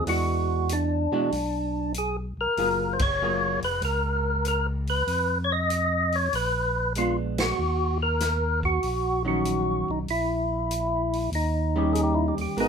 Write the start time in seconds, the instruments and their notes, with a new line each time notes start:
0.06 tonewheel organ E2 F#4, hollow-body jazz guitar E3 G#3 D4 F#4, open hi-hat
0.69 tonewheel organ D4, closed hi-hat
1.12 tonewheel organ B2, hollow-body jazz guitar E3 G#3 D4 F#4
1.32 tonewheel organ B1, open hi-hat
1.94 tonewheel organ G#4, closed hi-hat
2.37 tonewheel organ B1 A#4
2.57 tonewheel organ F#1, hollow-body jazz guitar F#3 A#3 F4 G#4, open hi-hat
2.93 tonewheel organ C5
2.99 tonewheel organ C#5, kick, ride
3.22 hollow-body jazz guitar F#3 A#3 F4 G#4
3.62 tonewheel organ F1 B4, open hi-hat
3.82 tonewheel organ C#2 A#4, open hi-hat
4.45 tonewheel organ A#4, closed hi-hat
4.87 tonewheel organ B4, open hi-hat
5.07 tonewheel organ F2, open hi-hat
5.44 tonewheel organ C#5
5.52 tonewheel organ D#5
5.70 closed hi-hat
6.12 tonewheel organ C#5, open hi-hat
6.33 tonewheel organ A#1 B4, open hi-hat
6.95 hollow-body jazz guitar G#3 B3 D4, tonewheel organ F4, closed hi-hat
7.38 tonewheel organ F#4, snare, ride
7.58 tonewheel organ D#2
8.03 tonewheel organ A#4
8.20 snare, closed hi-hat
8.63 tonewheel organ F#4, kick
8.83 tonewheel organ A#1, open hi-hat
9.25 hollow-body jazz guitar D#3 F#3 C#4, tonewheel organ F#4
9.45 closed hi-hat
9.89 tonewheel organ B1 D#4
10.08 tonewheel organ A#1 E4, open hi-hat
10.71 closed hi-hat
11.13 open hi-hat
11.32 tonewheel organ D#2 D#4, open hi-hat
11.76 hollow-body jazz guitar D#3 G3 C#4, tonewheel organ G4
11.93 tonewheel organ G#4, closed hi-hat
12.03 tonewheel organ G4
12.15 tonewheel organ E4
12.28 tonewheel organ G4
12.37 tonewheel organ D#2, open hi-hat
12.41 tonewheel organ G4
12.57 tonewheel organ G#1 B3 D#4 G#4, hollow-body jazz guitar G#3 B3 F#4 A#4, open hi-hat